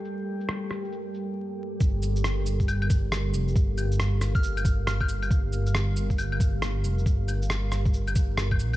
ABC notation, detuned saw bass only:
X:1
M:4/4
L:1/8
Q:"Swing 16ths" 1/4=137
K:Gm
V:1 name="Detuned saw bass" clef=bass
z8 | G,,,6- G,,, F,,, | G,,,4 G,,,4 | G,,,6- G,,, F,,, |
G,,,4 G,,,3 B,,, |]